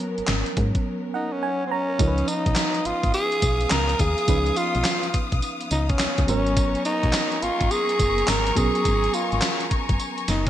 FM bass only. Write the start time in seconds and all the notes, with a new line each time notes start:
0.18 G#1
0.29 G#1
0.57 G#2
2.00 C#2
2.46 B1
2.86 G#1
3.04 G#1
3.43 B1
3.72 C#2
4.00 D#2
4.28 C#2
4.76 B1
5.14 B1
5.32 B1
5.71 C#2
6.00 C#2
6.19 C#2
6.29 G#1
7.04 B1
7.43 G#1
7.61 G#1
8.00 F#1
8.28 G#1
8.57 B1
8.85 G#1
9.33 G#1
9.71 F#1
9.90 F#1
10.29 F#1